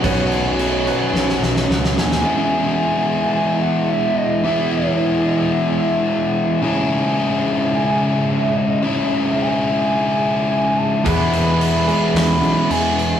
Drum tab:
CC |x-x-x-x---------|----------------|----------------|----------------|
SD |--------oooooooo|----------------|----------------|----------------|
BD |o---------------|----------------|----------------|----------------|

CC |----------------|x-x-x-x-x-x-x-x-|
SD |----------------|--------o-------|
BD |----------------|o---------------|